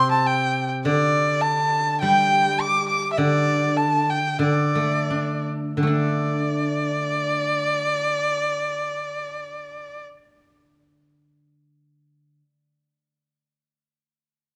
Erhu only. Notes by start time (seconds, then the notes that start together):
Already playing: C6
0.11 A5
0.27 G5
0.85 D5
1.42 A5
2.01 G5
2.60 D6
2.88 D6
3.12 E5
3.17 D5
3.77 A5
4.10 G5
4.42 D5
5.91 D5